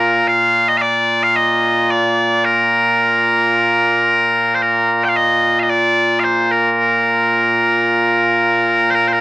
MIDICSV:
0, 0, Header, 1, 2, 480
1, 0, Start_track
1, 0, Key_signature, -2, "major"
1, 0, Tempo, 540541
1, 259, Time_signature, 4, 2, 24, 8
1, 8176, End_track
2, 0, Start_track
2, 0, Title_t, "Bagpipes"
2, 0, Program_c, 0, 109
2, 0, Note_on_c, 0, 46, 89
2, 0, Note_on_c, 0, 58, 89
2, 0, Note_on_c, 0, 65, 89
2, 0, Note_on_c, 0, 70, 84
2, 246, Note_off_c, 0, 70, 0
2, 246, Note_on_c, 0, 77, 107
2, 607, Note_off_c, 0, 77, 0
2, 607, Note_on_c, 0, 75, 90
2, 688, Note_off_c, 0, 75, 0
2, 688, Note_on_c, 0, 77, 96
2, 723, Note_off_c, 0, 77, 0
2, 723, Note_on_c, 0, 74, 96
2, 1094, Note_off_c, 0, 74, 0
2, 1094, Note_on_c, 0, 77, 100
2, 1208, Note_off_c, 0, 77, 0
2, 1208, Note_on_c, 0, 75, 94
2, 1691, Note_off_c, 0, 75, 0
2, 1691, Note_on_c, 0, 74, 90
2, 2171, Note_off_c, 0, 74, 0
2, 2171, Note_on_c, 0, 70, 93
2, 4038, Note_off_c, 0, 70, 0
2, 4038, Note_on_c, 0, 72, 61
2, 4104, Note_off_c, 0, 72, 0
2, 4104, Note_on_c, 0, 70, 86
2, 4477, Note_off_c, 0, 70, 0
2, 4477, Note_on_c, 0, 79, 71
2, 4516, Note_off_c, 0, 79, 0
2, 4516, Note_on_c, 0, 77, 71
2, 4585, Note_off_c, 0, 77, 0
2, 4585, Note_on_c, 0, 75, 90
2, 4969, Note_off_c, 0, 75, 0
2, 4969, Note_on_c, 0, 77, 67
2, 4999, Note_off_c, 0, 77, 0
2, 4999, Note_on_c, 0, 75, 67
2, 5060, Note_off_c, 0, 75, 0
2, 5060, Note_on_c, 0, 74, 101
2, 5503, Note_off_c, 0, 74, 0
2, 5503, Note_on_c, 0, 77, 75
2, 5542, Note_off_c, 0, 77, 0
2, 5542, Note_on_c, 0, 72, 75
2, 5783, Note_off_c, 0, 72, 0
2, 5783, Note_on_c, 0, 70, 82
2, 7905, Note_off_c, 0, 70, 0
2, 7905, Note_on_c, 0, 72, 98
2, 7944, Note_off_c, 0, 72, 0
2, 7944, Note_on_c, 0, 70, 98
2, 8059, Note_off_c, 0, 70, 0
2, 8059, Note_on_c, 0, 72, 66
2, 8103, Note_off_c, 0, 72, 0
2, 8103, Note_on_c, 0, 70, 97
2, 8176, Note_off_c, 0, 46, 0
2, 8176, Note_off_c, 0, 58, 0
2, 8176, Note_off_c, 0, 65, 0
2, 8176, Note_off_c, 0, 70, 0
2, 8176, End_track
0, 0, End_of_file